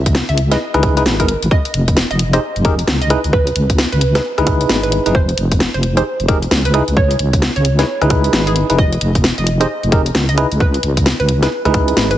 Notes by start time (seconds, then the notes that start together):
Already playing: C#2
0.06 kick, closed hi-hat
0.15 snare
0.29 C#2 E5, closed hi-hat
0.38 closed hi-hat
0.52 D#4 E4 G#4 B4 D#5, cross-stick, snare, closed hi-hat
0.74 C#2 D#4 E4 G#4 B4, cross-stick, closed hi-hat
0.83 kick, cross-stick, closed hi-hat
0.97 D#4 E4 G#4 B4, closed hi-hat
1.06 G#1, snare
1.20 D#4 E4 G#4 A#4 B4, kick, closed hi-hat
1.28 closed hi-hat
1.42 G#1, closed hi-hat
1.51 D#5, kick
1.65 closed hi-hat
1.74 F1, closed hi-hat
1.88 kick, closed hi-hat
1.97 snare
2.11 F1 D#5, closed hi-hat
2.19 closed hi-hat
2.33 D#4 G4 G#4 C5 D#5, cross-stick, closed hi-hat
2.56 F1, closed hi-hat
2.65 D#4 G4 G#4 A#4, kick, closed hi-hat
2.79 closed hi-hat
2.88 C#2, snare
3.02 D#5, closed hi-hat
3.10 D#4 E4 G#4 B4, cross-stick, closed hi-hat
3.24 C#2, closed hi-hat
3.33 B4, kick
3.47 closed hi-hat
3.56 C#2, closed hi-hat
3.70 kick, closed hi-hat
3.78 snare
3.92 C#2 B4, closed hi-hat
4.01 closed hi-hat
4.15 D#4 E4 G#4 B4, cross-stick, snare, closed hi-hat
4.38 C#2 D#4 E4 G#4 B4, cross-stick, closed hi-hat
4.47 kick, cross-stick, closed hi-hat
4.61 closed hi-hat
4.69 G#1, snare
4.83 B4, closed hi-hat
4.92 closed hi-hat
5.06 F1 D#4 E4 G#4 B4, closed hi-hat
5.15 C5, kick
5.29 closed hi-hat
5.38 F1, closed hi-hat
5.52 kick, closed hi-hat
5.60 snare
5.74 F1 C5, closed hi-hat
5.83 closed hi-hat
5.97 D#4 G4 G#4 C5, cross-stick, closed hi-hat
6.20 F1, closed hi-hat
6.28 D#4 G4 G#4 A#4, kick, closed hi-hat
6.42 closed hi-hat
6.51 C#2, snare
6.65 B4, closed hi-hat
6.74 D#4 E4 G#4 B4, cross-stick, closed hi-hat
6.88 C#2, closed hi-hat
6.97 C#5, kick
7.11 closed hi-hat
7.19 C#2, closed hi-hat
7.33 kick, closed hi-hat
7.42 snare
7.56 C#2 C#5, closed hi-hat
7.65 closed hi-hat
7.79 D#4 E4 G#4 B4 C#5, cross-stick, snare, closed hi-hat
8.02 C#2 D#4 E4 G#4 B4, cross-stick, closed hi-hat
8.10 kick, cross-stick, closed hi-hat
8.24 closed hi-hat
8.33 G#1, snare
8.47 G#4, closed hi-hat
8.56 closed hi-hat
8.70 F1 D#4 E4 G#4 B4, closed hi-hat
8.78 D#5, kick
8.93 closed hi-hat
9.01 F1, closed hi-hat
9.15 kick, closed hi-hat
9.24 snare
9.38 F1 D#5, closed hi-hat
9.47 closed hi-hat
9.61 D#4 G4 G#4 C5 D#5, cross-stick, closed hi-hat
9.83 F1, closed hi-hat
9.92 D#4 G4 G#4 A#4, kick, closed hi-hat
10.06 closed hi-hat
10.15 C#2, snare
10.29 D#5, closed hi-hat
10.38 D#4 E4 G#4 B4, cross-stick, closed hi-hat
10.52 C#2, closed hi-hat
10.60 B4, kick
10.74 closed hi-hat
10.83 C#2, closed hi-hat
10.97 kick, closed hi-hat
11.06 snare
11.20 C#2 B4, closed hi-hat
11.29 closed hi-hat
11.43 D#4 E4 G#4 B4, cross-stick, snare, closed hi-hat
11.65 C#2 D#4 E4 G#4 B4, cross-stick, closed hi-hat
11.74 kick, cross-stick, closed hi-hat
11.88 closed hi-hat
11.97 G#1, snare
12.11 B4, closed hi-hat